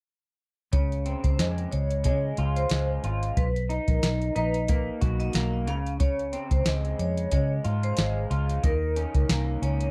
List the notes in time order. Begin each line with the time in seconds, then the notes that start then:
0.73 C#2 C#3 C#5, kick, closed hi-hat
0.92 closed hi-hat
1.06 C4, closed hi-hat
1.24 C#2 C5, kick, closed hi-hat
1.39 F2 G#3, snare, closed hi-hat
1.58 closed hi-hat
1.71 C#2 C#5, closed hi-hat
1.90 closed hi-hat
2.04 C#3 G#3 C#5, kick, closed hi-hat
2.37 C#2 F4, closed hi-hat
2.56 C5, closed hi-hat
2.69 C#2 G#3, snare, closed hi-hat
3.04 G#1 F4, closed hi-hat
3.23 closed hi-hat
3.37 B1 B4, kick, closed hi-hat
3.56 closed hi-hat
3.69 D#4, closed hi-hat
3.88 A#1 A#4, kick, closed hi-hat
4.03 B1, snare, closed hi-hat
4.21 closed hi-hat
4.35 A#1 D#4 B4, closed hi-hat
4.54 closed hi-hat
4.68 A#3 B4, kick, closed hi-hat
5.01 B1 F#4, kick, closed hi-hat
5.20 D#5, closed hi-hat
5.33 B1 A#3, snare, closed hi-hat
5.67 C#2 C#3 F5, closed hi-hat
5.86 closed hi-hat
6.00 C#3 C#5, kick, closed hi-hat
6.19 closed hi-hat
6.33 C4, closed hi-hat
6.51 C#2 C5, kick, closed hi-hat
6.66 C#2 G#3, snare, closed hi-hat
6.85 closed hi-hat
6.99 F2 C#5, closed hi-hat
7.17 closed hi-hat
7.31 C#3 G#3 C#5, kick, closed hi-hat
7.64 G#2 F4, closed hi-hat
7.83 C5, closed hi-hat
7.97 G#1 G#3, snare, closed hi-hat
8.31 C#2 F4, closed hi-hat
8.49 closed hi-hat
8.63 D#2 D#3 A#4, kick, closed hi-hat
8.96 C#4, closed hi-hat
9.15 C#2 A#4, kick, closed hi-hat
9.29 C2 A#3, snare, closed hi-hat
9.62 C#2 C#4 C#5, closed hi-hat
9.81 closed hi-hat